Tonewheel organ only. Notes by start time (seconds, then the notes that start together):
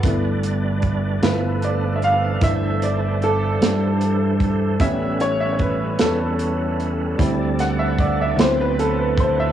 0.04 G3 D4 B4 D5
1.22 F3 A4 B4
2.42 E3 D4 A4 C5
4.80 G3 C#4 A4 B4
7.18 D4 D5
8.36 F#3 E4 B4